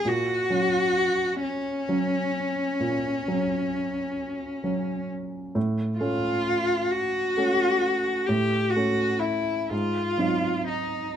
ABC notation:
X:1
M:12/8
L:1/8
Q:3/8=43
K:Gblyd
V:1 name="Cello"
G3 D8 z | z F2 G3 =G _G _F =F2 E |]
V:2 name="Grand piano"
B,, [G,D]3 [G,D]2 B,, [G,D]3 [G,D]2 | =A,, [=A,D]3 [A,D]2 A,, [A,D]2 _A,, [G,CE]2 |]